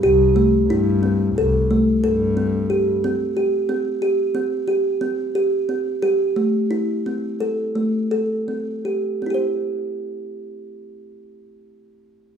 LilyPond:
<<
  \new Staff \with { instrumentName = "Kalimba" } { \time 9/8 \key c \major \tempo 4. = 59 g'8 a8 e'8 c'8 a'8 a8 a'8 c'8 g'8 | c'8 g'8 c'8 g'8 c'8 g'8 c'8 g'8 c'8 | g'8 a8 e'8 c'8 a'8 a8 a'8 c'8 g'8 | <c' e' g' c''>1~ <c' e' g' c''>8 | }
  \new Staff \with { instrumentName = "Double bass" } { \clef bass \time 9/8 \key c \major c,4 g,4 c,8 r8 g,4. | r1 r8 | r1 r8 | r1 r8 | }
>>